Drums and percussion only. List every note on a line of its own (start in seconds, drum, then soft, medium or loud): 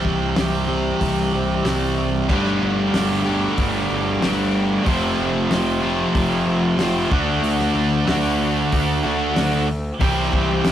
0.05 kick medium
0.36 snare loud
0.36 open hi-hat soft
1.01 kick medium
1.01 open hi-hat medium
1.65 snare medium
1.65 open hi-hat medium
2.29 kick medium
2.29 crash medium
2.45 snare soft
2.94 snare loud
2.94 open hi-hat medium
3.58 kick loud
3.58 open hi-hat medium
4.22 snare loud
4.22 open hi-hat medium
4.86 kick loud
4.86 open hi-hat medium
5.51 snare loud
5.51 open hi-hat medium
6.15 kick loud
6.15 open hi-hat medium
6.79 snare loud
6.79 open hi-hat medium
7.12 kick loud
7.44 open hi-hat medium
7.60 snare soft
8.07 snare loud
8.07 open hi-hat medium
8.72 kick medium
8.72 open hi-hat medium
9.36 snare medium
9.36 open hi-hat medium
10.01 kick loud
10.01 open hi-hat medium
10.33 kick medium
10.65 snare loud
10.65 open hi-hat medium